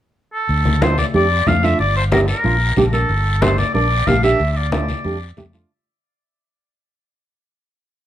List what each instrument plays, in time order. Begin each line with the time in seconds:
0.34 oboe A4
0.49 fingered electric bass D2, high conga, long guiro
0.65 high conga
0.81 nylon-string guitar A3 D4 F4, oboe C5, high conga, short guiro
0.98 oboe D5, high conga, short guiro
1.14 fingered electric bass F2, nylon-string guitar A3 D4 G4, oboe D5, high conga, long guiro
1.47 fingered electric bass F2, nylon-string guitar A3 D4 F4, oboe F5, high conga, short guiro
1.63 nylon-string guitar A3 D4 F4, oboe E5, short guiro
1.79 fingered electric bass G1, oboe D5, high conga, long guiro
1.96 oboe C5
2.12 nylon-string guitar A#3 D4 G4, oboe A#4, high conga, short guiro
2.28 oboe A#4, short guiro
2.44 fingered electric bass A#1, nylon-string guitar A#3 D4 F4, high conga, long guiro
2.76 fingered electric bass A#1, nylon-string guitar A#3 D4 G4, high conga, short guiro
2.93 nylon-string guitar A#3 D4 A#4, oboe A4, short guiro
3.09 fingered electric bass G1, high conga, long guiro
3.42 nylon-string guitar A#3 D4 G4, oboe C5, high conga, short guiro
3.58 oboe D5, high conga, short guiro
3.74 fingered electric bass A#1, nylon-string guitar A#3 D4 A#4, oboe D5, high conga, long guiro
4.07 fingered electric bass A#1, nylon-string guitar A#3 D4 G4, oboe F5, high conga, short guiro
4.23 nylon-string guitar A#3 D4 G4, oboe E5, short guiro
4.40 fingered electric bass D2, high conga, long guiro
4.52 oboe E5
4.57 oboe D5
4.72 nylon-string guitar A3 D4 F4, oboe D5, high conga, short guiro
4.88 high conga, short guiro
5.04 fingered electric bass F2, nylon-string guitar A3 D4 G4, high conga, long guiro
5.37 fingered electric bass F2, nylon-string guitar A3 D4 G4, high conga, short guiro
5.53 nylon-string guitar A3 D4 F4, short guiro